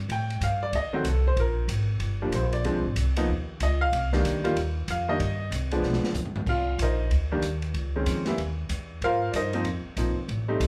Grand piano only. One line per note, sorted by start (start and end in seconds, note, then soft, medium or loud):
0.12 0.40 G5 loud
0.43 0.62 F5 medium
0.63 0.73 D5 loud
0.75 0.94 D#5 medium
0.93 1.04 D#3 medium
0.93 1.04 F#3 medium
0.93 1.04 A3 medium
0.93 1.04 C4 medium
0.93 1.06 F#4 medium
1.08 1.26 A4 medium
1.27 1.38 C5 loud
1.40 1.68 A#4 medium
2.22 2.32 F3 medium
2.22 2.32 G3 medium
2.22 2.32 A#3 medium
2.22 2.32 D4 medium
2.35 2.53 C5 medium
2.53 2.94 D5 medium
2.65 2.83 F3 medium
2.65 2.83 G#3 medium
2.65 2.83 C4 medium
2.65 2.83 D4 medium
3.17 3.27 F3 medium
3.17 3.27 A#3 medium
3.17 3.27 B3 medium
3.17 3.28 D#4 medium
3.63 3.81 D#5 medium
3.81 4.21 F5 loud
4.13 4.42 D#3 medium
4.13 4.42 G3 medium
4.13 4.42 A#3 medium
4.13 4.42 D4 medium
4.44 4.55 D#3 medium
4.44 4.54 G3 medium
4.44 4.55 A#3 medium
4.44 4.55 F4 medium
4.90 5.08 F5 medium
5.08 5.19 D#3 medium
5.08 5.19 G3 medium
5.08 5.19 A#3 medium
5.08 5.19 D4 medium
5.08 5.49 D#5 loud
5.72 6.13 F3 medium
5.72 6.13 G#3 medium
5.72 6.13 B3 medium
5.72 6.13 D4 medium
6.49 6.78 F4 medium
6.49 6.78 F5 medium
6.82 7.10 D#4 medium
6.82 7.10 A#4 medium
6.82 7.10 C5 medium
6.82 7.10 D#5 medium
7.32 7.42 D#3 medium
7.32 7.42 G3 medium
7.32 7.42 A#3 medium
7.32 7.42 D4 medium
7.96 8.25 D#3 medium
7.96 8.25 G#3 medium
7.96 8.25 C4 medium
7.96 8.25 C#4 medium
8.27 8.37 E3 medium
8.27 8.37 G3 medium
8.27 8.37 A#3 medium
8.27 8.37 E4 medium
9.04 9.33 F4 medium
9.04 9.33 A#4 medium
9.04 9.32 C5 medium
9.04 9.33 F5 loud
9.31 9.34 D5 medium
9.36 9.53 D#4 medium
9.36 9.64 A#4 medium
9.36 9.65 C5 medium
9.36 9.64 D#5 medium
9.54 9.64 F3 medium
9.54 9.64 A#3 medium
9.54 9.64 C4 medium
9.54 9.65 D#4 medium
9.97 10.16 F3 medium
9.97 10.15 A#3 soft
9.97 10.15 C4 medium
9.97 10.15 D#4 medium
10.48 10.67 G3 medium
10.48 10.67 A3 medium
10.48 10.67 C4 medium
10.48 10.67 D#4 medium